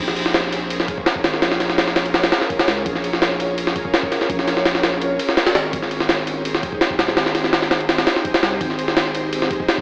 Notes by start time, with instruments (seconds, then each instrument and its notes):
0.00 sub bass A#1
0.08 snare
0.16 ride
0.26 snare
0.34 snare, ride
0.52 ambient pad C#4 F4 G#4 A#4 C#5, ride
0.70 ride
0.80 snare
0.88 kick, ride
0.98 kick
1.06 snare, ride
1.16 kick
1.24 sub bass G#1, snare, ride
1.34 snare
1.42 sub bass A#1, snare, ride
1.52 snare
1.60 snare, ride
1.70 snare
1.78 snare, ride
1.88 snare
1.96 ambient pad C#4 F4 G#4 A#4 C#5, snare, ride
2.06 ride
2.14 snare, ride
2.24 snare, ride
2.32 snare, ride
2.41 snare
2.50 kick, ride
2.59 snare, ride
2.68 sub bass C#2, snare, ride
2.86 sub bass A#1, kick, ride
2.95 snare
3.04 ride
3.13 snare
3.22 snare, ride
3.39 ambient pad C#4 F4 G#4 A#4 C#5, ride
3.58 ride
3.67 snare
3.76 kick, ride
3.85 kick
3.94 snare, ride
4.03 kick
4.12 snare, ride
4.21 snare
4.29 sub bass A#1, kick, ride
4.39 snare
4.47 snare, ride
4.57 snare
4.65 snare, ride
4.75 snare
4.83 ambient pad C#4 F4 G#4 A#4 C#5, snare, ride
5.01 ride
5.19 ride
5.29 snare
5.37 snare, ride
5.47 snare, ride
5.55 sub bass G#1, snare, ride
5.73 sub bass G#1, kick, ride
5.82 snare
5.91 ride
6.00 snare
6.09 snare, ride
6.27 ambient pad C4 D#4 G4 G#4 C5, ride
6.45 ride
6.54 snare
6.63 kick, ride
6.72 kick
6.81 snare, ride
6.90 kick
6.99 sub bass D#1, snare, ride
7.08 snare
7.17 sub bass G#1, snare, ride
7.26 snare
7.35 snare, ride
7.44 snare
7.53 snare, ride
7.62 snare
7.71 ambient pad C4 D#4 G4 G#4 C5, snare, ride
7.80 ride
7.89 snare, ride
7.98 snare, ride
8.07 snare, ride
8.16 snare
8.25 kick, ride
8.34 snare, ride
8.42 sub bass C2, snare, ride
8.61 sub bass G#1, kick, ride
8.70 snare
8.79 ride
8.88 snare
8.97 snare, ride
9.15 ambient pad C4 D#4 G4 G#4 C5, ride
9.33 ride
9.42 snare
9.51 kick, ride
9.60 kick
9.68 snare, ride
9.78 kick